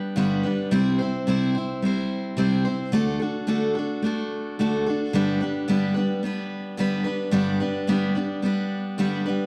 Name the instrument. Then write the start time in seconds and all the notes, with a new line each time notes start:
steel-string acoustic guitar
Already playing: G3 B3 D4 B4
0.16 G2 D3 G3 B3 D4 B4
0.43 G3 B3 D4 B4
0.71 C3 G3 C4 E4 C5
0.98 C4 E4 C5
1.27 C3 G3 C4 E4 C5
1.55 C4 E4 C5
1.82 G3 C4 E4 C5
2.37 C3 G3 C4 E4 C5
2.65 C4 E4 C5
2.92 D3 A3 D4 F#4 A4
3.20 D4 F#4 A4
3.47 D3 A3 D4 F#4 A4
3.75 D4 F#4 A4
4.02 A3 D4 F#4 A4
4.59 D3 A3 D4 F#4 A4
4.86 D4 F#4 A4
5.13 G2 D3 G3 B3 D4 B4
5.41 G3 B3 D4 B4
5.68 G2 D3 G3 B3 D4 B4
5.94 B3 D4 B4
5.98 G3
6.23 G3 B3 D4 B4
6.77 G2 D3 G3 B3 D4 B4
7.04 G3 B3 D4 B4
7.31 G2 D3 G3 B3 D4 B4
7.60 G3 B3 D4 B4
7.87 G2 D3 G3 B3 D4 B4
8.15 G3 B3 D4 B4
8.42 G3 B3 D4 B4
8.98 G2 D3 G3 B3 D4 B4
9.26 G3 B3 D4 B4